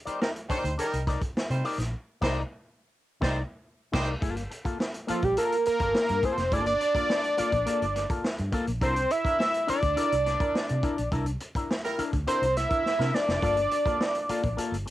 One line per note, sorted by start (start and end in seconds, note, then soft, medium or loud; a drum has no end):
0.05 0.18 G3 medium
0.05 0.19 D#4 medium
0.05 0.20 A#4 medium
0.05 0.18 C5 medium
0.05 0.20 D5 medium
0.05 muted fingered electric bass stroke soft
0.05 closed hi-hat medium
0.21 0.30 G3 medium
0.21 0.30 D#4 medium
0.21 0.30 A#4 medium
0.21 muted clean electric guitar stroke soft
0.21 snare loud
0.35 muted clean electric guitar stroke soft
0.35 closed hi-hat soft
0.49 0.72 G3 loud
0.49 0.69 D#4 medium
0.49 0.73 D#4 medium
0.49 0.64 A#4 medium
0.49 0.72 C5 loud
0.49 0.63 D5 medium
0.49 muted fingered electric bass stroke soft
0.49 kick loud
0.49 closed hi-hat loud
0.64 0.75 D2 medium
0.64 muted clean electric guitar stroke soft
0.64 closed hi-hat medium
0.78 1.02 G3 loud
0.78 0.98 D#4 medium
0.78 1.02 D#4 loud
0.78 0.93 A#4 medium
0.78 1.02 A#4 loud
0.78 0.92 D5 medium
0.78 closed hi-hat loud
0.93 1.16 C2 medium
0.93 muted clean electric guitar stroke soft
0.93 closed hi-hat medium
1.07 1.21 D#4 medium
1.07 1.21 A#4 medium
1.07 1.20 D5 medium
1.07 kick medium
1.07 snare soft
1.07 closed hi-hat medium
1.21 muted clean electric guitar stroke soft
1.21 kick loud
1.21 closed hi-hat medium
1.37 snare loud
1.50 1.61 C3 medium
1.50 1.73 G3 medium
1.50 1.74 D#4 medium
1.50 1.74 C5 medium
1.50 muted clean electric guitar stroke soft
1.50 closed hi-hat medium
1.64 1.82 D#4 medium
1.64 1.79 A#4 medium
1.64 1.78 D5 loud
1.64 open hi-hat medium
1.78 1.93 A#1 loud
1.78 muted clean electric guitar stroke soft
1.78 snare soft
1.78 closed hi-hat medium
2.21 2.41 C2 loud
2.21 2.37 G3 medium
2.21 2.42 D#4 loud
2.21 2.37 D#4 loud
2.21 2.41 A#4 loud
2.21 2.37 C5 loud
2.21 2.41 D5 medium
2.21 kick loud
2.21 snare loud
2.21 crash medium
3.21 3.41 C2 loud
3.21 3.37 G3 loud
3.21 3.41 D#4 medium
3.21 3.37 D#4 medium
3.21 3.41 A#4 loud
3.21 3.37 C5 medium
3.21 3.42 D5 loud
3.21 kick loud
3.21 snare loud
3.92 4.13 C2 medium
3.92 4.08 G3 loud
3.92 4.12 D#4 loud
3.92 4.08 D#4 loud
3.92 4.13 A#4 medium
3.92 4.08 C5 loud
3.92 4.13 D5 loud
3.92 kick loud
3.92 snare loud
3.92 crash medium
4.21 4.45 G1 loud
4.21 4.42 A#3 medium
4.21 4.36 F4 medium
4.21 4.35 A4 medium
4.21 kick loud
4.21 closed hi-hat medium
4.36 muted clean electric guitar stroke soft
4.36 closed hi-hat medium
4.50 muted clean electric guitar stroke soft
4.50 closed hi-hat medium
4.64 4.78 A#3 medium
4.64 4.78 F4 medium
4.64 4.78 A4 medium
4.64 muted fingered electric bass stroke soft
4.64 kick medium
4.64 closed hi-hat medium
4.79 muted clean electric guitar stroke soft
4.79 snare loud
4.93 muted clean electric guitar stroke soft
4.93 closed hi-hat medium
5.07 5.25 A#3 loud
5.07 5.22 F4 loud
5.07 5.26 F4 medium
5.07 5.21 A4 loud
5.07 muted fingered electric bass stroke soft
5.07 closed hi-hat medium
5.22 5.34 A#1 loud
5.22 5.37 G4 medium
5.22 muted clean electric guitar stroke soft
5.22 kick medium
5.22 closed hi-hat soft
5.37 5.55 A#3 medium
5.37 5.55 F4 medium
5.37 5.55 A4 medium
5.37 5.64 A#4 medium
5.37 closed hi-hat loud
5.52 closed hi-hat medium
5.65 6.26 A#4 medium
5.65 muted clean electric guitar stroke soft
5.65 muted fingered electric bass stroke soft
5.65 closed hi-hat medium
5.79 5.92 G1 medium
5.79 5.95 A#3 medium
5.79 5.94 F4 medium
5.79 5.94 A4 medium
5.79 kick loud
5.79 closed hi-hat medium
5.95 snare loud
6.09 6.21 G2 loud
6.09 muted clean electric guitar stroke soft
6.09 closed hi-hat medium
6.23 6.43 A#3 medium
6.23 6.38 F4 medium
6.23 6.36 A4 medium
6.23 6.54 C5 loud
6.23 kick loud
6.23 closed hi-hat medium
6.38 6.52 F1 medium
6.38 muted clean electric guitar stroke soft
6.38 snare soft
6.38 closed hi-hat medium
6.52 6.75 G1 loud
6.52 6.72 A#3 medium
6.52 6.66 F4 medium
6.52 6.65 A4 medium
6.52 6.66 D5 loud
6.52 kick loud
6.52 closed hi-hat medium
6.66 8.06 D5 loud
6.66 muted clean electric guitar stroke soft
6.66 closed hi-hat medium
6.80 muted clean electric guitar stroke soft
6.80 closed hi-hat medium
6.95 7.08 A#3 soft
6.95 7.09 F4 medium
6.95 7.09 A4 medium
6.95 muted fingered electric bass stroke soft
6.95 kick medium
6.95 closed hi-hat medium
7.09 muted clean electric guitar stroke soft
7.09 snare loud
7.24 muted clean electric guitar stroke soft
7.24 closed hi-hat medium
7.37 7.55 A#3 loud
7.37 7.52 F4 loud
7.37 7.51 A4 loud
7.37 muted fingered electric bass stroke soft
7.37 closed hi-hat medium
7.52 7.64 A#1 medium
7.52 muted clean electric guitar stroke soft
7.52 kick medium
7.52 closed hi-hat soft
7.66 7.84 A#3 medium
7.66 7.85 F4 medium
7.66 7.85 A4 medium
7.66 muted fingered electric bass stroke soft
7.66 closed hi-hat medium
7.82 8.04 G1 medium
7.82 closed hi-hat soft
7.95 muted clean electric guitar stroke soft
7.95 snare soft
7.95 closed hi-hat medium
8.10 8.24 A#3 soft
8.10 8.24 F4 medium
8.10 8.24 A4 medium
8.10 kick loud
8.10 closed hi-hat medium
8.24 snare loud
8.38 8.51 G2 loud
8.38 muted clean electric guitar stroke soft
8.38 closed hi-hat soft
8.52 8.70 A#3 medium
8.52 8.67 F4 loud
8.52 8.66 A4 loud
8.52 kick medium
8.52 closed hi-hat medium
8.67 8.82 A#1 medium
8.67 muted clean electric guitar stroke medium
8.67 closed hi-hat medium
8.81 9.04 C2 loud
8.81 8.99 D4 medium
8.81 8.95 E4 medium
8.81 8.95 A#4 loud
8.81 9.13 C5 loud
8.81 kick loud
8.81 closed hi-hat medium
8.96 muted clean electric guitar stroke medium
8.96 closed hi-hat medium
9.10 9.69 E5 loud
9.10 muted clean electric guitar stroke soft
9.10 closed hi-hat medium
9.24 9.38 D4 medium
9.24 9.38 E4 medium
9.24 9.39 A#4 medium
9.24 muted fingered electric bass stroke soft
9.24 kick medium
9.24 closed hi-hat medium
9.39 muted clean electric guitar stroke soft
9.39 snare loud
9.53 muted clean electric guitar stroke soft
9.53 closed hi-hat medium
9.67 9.85 D4 medium
9.67 9.82 E4 loud
9.67 9.80 A#4 loud
9.67 11.09 D5 loud
9.67 muted fingered electric bass stroke soft
9.67 closed hi-hat medium
9.82 9.94 D2 medium
9.82 muted clean electric guitar stroke soft
9.82 kick medium
9.82 closed hi-hat medium
9.96 10.14 D4 medium
9.96 10.15 E4 medium
9.96 10.15 A#4 medium
9.96 muted fingered electric bass stroke soft
9.96 closed hi-hat loud
10.12 10.35 C2 medium
10.12 closed hi-hat medium
10.26 muted clean electric guitar stroke soft
10.26 snare soft
10.26 closed hi-hat medium
10.40 10.55 D4 soft
10.40 10.54 E4 medium
10.40 10.54 A#4 medium
10.40 kick loud
10.40 closed hi-hat medium
10.55 snare loud
10.69 10.81 C3 loud
10.69 muted clean electric guitar stroke soft
10.69 closed hi-hat medium
10.83 11.01 D4 medium
10.83 10.97 E4 medium
10.83 10.96 A#4 medium
10.83 kick loud
10.83 closed hi-hat medium
10.97 11.10 A#1 medium
10.97 muted clean electric guitar stroke soft
10.97 closed hi-hat medium
11.12 11.35 C2 loud
11.12 11.30 D4 medium
11.12 11.26 E4 medium
11.12 11.26 A#4 medium
11.12 kick loud
11.12 closed hi-hat medium
11.26 muted clean electric guitar stroke soft
11.26 closed hi-hat medium
11.40 muted clean electric guitar stroke soft
11.40 closed hi-hat medium
11.55 11.69 D4 medium
11.55 11.70 E4 medium
11.55 11.69 A#4 medium
11.55 muted fingered electric bass stroke soft
11.55 kick medium
11.55 closed hi-hat medium
11.70 muted clean electric guitar stroke soft
11.70 snare loud
11.84 12.03 G3 medium
11.84 12.03 E4 loud
11.84 12.03 A#4 loud
11.84 muted clean electric guitar stroke soft
11.84 closed hi-hat medium
11.98 12.16 D4 medium
11.98 12.12 E4 medium
11.98 12.11 A#4 medium
11.98 muted fingered electric bass stroke soft
11.98 closed hi-hat medium
12.12 12.25 D2 loud
12.12 muted clean electric guitar stroke soft
12.12 kick loud
12.12 closed hi-hat medium
12.27 12.45 D4 medium
12.27 12.45 E4 medium
12.27 12.45 A#4 medium
12.27 12.54 C5 medium
12.27 muted fingered electric bass stroke medium
12.27 closed hi-hat medium
12.42 12.64 C2 medium
12.42 closed hi-hat medium
12.56 13.16 E5 loud
12.56 muted clean electric guitar stroke soft
12.56 snare soft
12.56 closed hi-hat medium
12.69 12.82 D4 medium
12.69 12.82 E4 medium
12.69 12.84 A#4 medium
12.69 kick loud
12.69 closed hi-hat medium
12.84 muted clean electric guitar stroke soft
12.84 snare medium
12.99 13.11 C3 medium
12.99 13.12 D4 medium
12.99 13.12 E4 medium
12.99 13.12 A#4 medium
12.99 snare medium
13.13 14.58 D5 loud
13.13 muted clean electric guitar stroke soft
13.13 snare loud
13.27 13.40 F1 medium
13.27 muted clean electric guitar stroke soft
13.27 snare medium
13.42 13.65 G1 loud
13.42 13.60 A#3 medium
13.42 13.57 F4 medium
13.42 13.57 A4 loud
13.42 kick loud
13.42 closed hi-hat medium
13.57 muted clean electric guitar stroke soft
13.57 closed hi-hat medium
13.71 muted clean electric guitar stroke soft
13.71 closed hi-hat medium
13.85 13.99 A#3 medium
13.85 13.99 F4 medium
13.85 13.99 A4 medium
13.85 muted fingered electric bass stroke soft
13.85 kick loud
13.85 closed hi-hat medium
14.00 muted clean electric guitar stroke soft
14.00 snare loud
14.14 muted clean electric guitar stroke soft
14.14 closed hi-hat medium
14.29 14.47 A#3 medium
14.29 14.43 F4 medium
14.29 14.42 A4 loud
14.29 muted fingered electric bass stroke soft
14.29 closed hi-hat medium
14.43 14.55 A#1 medium
14.43 muted clean electric guitar stroke soft
14.43 kick loud
14.43 closed hi-hat medium
14.57 14.75 A#3 medium
14.57 14.75 F4 medium
14.57 14.76 A4 medium
14.57 muted fingered electric bass stroke soft
14.57 closed hi-hat loud
14.72 14.83 G1 medium
14.72 closed hi-hat medium
14.86 muted clean electric guitar stroke soft
14.86 closed hi-hat medium